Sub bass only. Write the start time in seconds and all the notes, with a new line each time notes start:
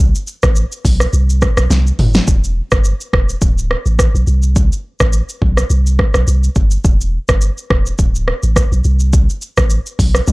Already playing: C2
0.43 A1
0.85 B1
1.13 C2
1.57 B1
1.70 C2
1.99 G1
2.28 E1
2.72 G1
3.13 E1
3.42 D1
3.86 A1
4.14 B1
4.27 C2
5.00 A1
5.42 B1
5.70 C2
6.15 B1
6.27 C2
6.56 G1
6.85 E1
7.29 G1
7.70 E1
7.99 D1
8.43 A1
8.72 B1
8.85 C2
9.57 A1
9.99 B1
10.28 C2